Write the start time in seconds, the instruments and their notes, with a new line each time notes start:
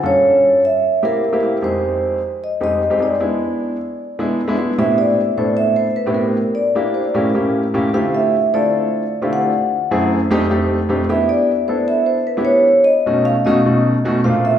0.03 grand piano G2 A#3 C#4 F4 A4, vibraphone C#5
0.65 vibraphone E5
1.02 grand piano A#3 C4 E4 G4, vibraphone A#4
1.32 grand piano A#3 C4 E4 G4
1.42 grand piano A#3 C4 E4 G4
1.62 grand piano F2 G#3 C4 D#4 G4, vibraphone C5
2.44 vibraphone D#5
2.61 grand piano F2 G#3 C4 D#4 G4, vibraphone D#5
2.90 grand piano F2 G#3 C4 D#4 G4
3.00 grand piano F2 G#3 C4 D#4 G4, vibraphone D5
3.20 grand piano G#3 B3 D4 E4
4.19 grand piano G#3 B3 D4 E4
4.48 grand piano G#3 B3 D4 E4
4.58 grand piano G#3 B3 D4 E4
4.78 grand piano A2 B3 C4 D4 E4 G4, vibraphone E5
4.98 vibraphone D5
5.37 grand piano A2 B3 C4 D4 E4 A4, vibraphone C5
5.57 vibraphone E5
5.76 vibraphone C5
5.96 vibraphone B4
6.06 grand piano A2 B3 C4 D4 E4 G4
6.14 vibraphone A#4
6.55 vibraphone D5
6.75 grand piano A#3 D4 E4 G4
6.94 vibraphone C5
7.14 grand piano A2 A#3 C#4 E4 G4, vibraphone A#4
7.34 grand piano A2 A#3 C#4 E4 G4
7.74 grand piano A2 A#3 C#4 E4 G4
7.94 grand piano D3 A3 C4 E4 F4 G4, vibraphone F5
8.15 vibraphone E5
8.53 grand piano D3 A3 C4 E4 F4 A4, vibraphone D5
9.22 grand piano D3 A3 C4 E4 F4 G4
9.33 vibraphone F#5
9.91 grand piano F#2 A3 C4 E4 G#4
10.31 grand piano F2 A3 C4 D4 D#4 G4
10.50 grand piano F2 A3 C4 D4 D#4 G4
10.89 grand piano F2 A3 C4 D4 D#4 G4
11.09 grand piano B3 D4 E4 G4, vibraphone E5
11.29 vibraphone D5
11.68 grand piano B3 D4 E4 A4, vibraphone C5
11.88 vibraphone E5
12.06 vibraphone C5
12.27 vibraphone B4
12.37 grand piano B3 D4 E4 G4, vibraphone C5
12.45 vibraphone C#5
12.84 vibraphone D#5
13.06 grand piano B2 A3 C#4 D#4 F#4
13.25 vibraphone F5
13.45 grand piano B2 A3 C#4 D#4 F#4, vibraphone D#5
13.65 grand piano B2 A3 C#4 D#4 F#4
14.05 grand piano B2 A3 C#4 D#4 F#4
14.24 grand piano A#2 A3 C4 D4 F4, vibraphone F5
14.45 vibraphone E5